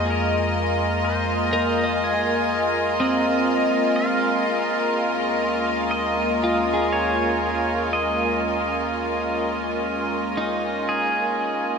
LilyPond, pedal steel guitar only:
\new Staff \with { instrumentName = "Pedal steel guitar" } { \time 4/4 \key ees \dorian \tempo 4 = 61 bes'4 c''4 aes'4 ees''4 | f''2 ees''4 des''4 | ees''2. aes'4 | }